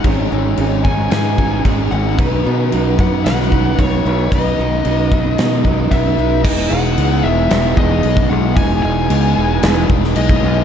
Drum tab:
CC |x---x---x---x---|x---x---x---x---|x---x---x---x---|x---x---x---x---|
SD |--------o-------|--------oo------|--------o-------|--------o-------|
BD |o-----o---o-o---|o-----o---o-o---|o-----o---o-o---|o---------o--o--|

CC |x---x---x---x---|
SD |--------o--o----|
BD |o---------o--o--|